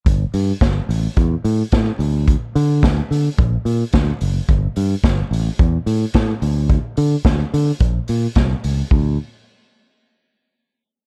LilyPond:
<<
  \new Staff \with { instrumentName = "Fingered electric bass" } { \clef bass \time 4/4 \key a \phrygian \tempo 4 = 109 g,,8 g,8 g,,8 a,,8 e,8 a,8 a,8 d,8~ | d,8 d8 d,8 d8 bes,,8 bes,8 d,8 fis,,8 | g,,8 g,8 g,,8 a,,8 e,8 a,8 a,8 d,8~ | d,8 d8 d,8 d8 bes,,8 bes,8 c,8 cis,8 |
d,8 r2. r8 | }
  \new DrumStaff \with { instrumentName = "Drums" } \drummode { \time 4/4 <hh bd>8 hho8 <hh bd sn>8 hho8 <hh bd>8 hho8 <hh bd sn>8 hho8 | <hh bd>8 hho8 <hh bd sn>8 hho8 <hh bd>8 hho8 <hh bd sn>8 hho8 | <hh bd>8 hho8 <hh bd sn>8 hho8 <hh bd>8 hho8 <hh bd sn>8 hho8 | <hh bd>8 hho8 <hh bd sn>8 hho8 <hh bd>8 hho8 <hh bd sn>8 hho8 |
bd4 r4 r4 r4 | }
>>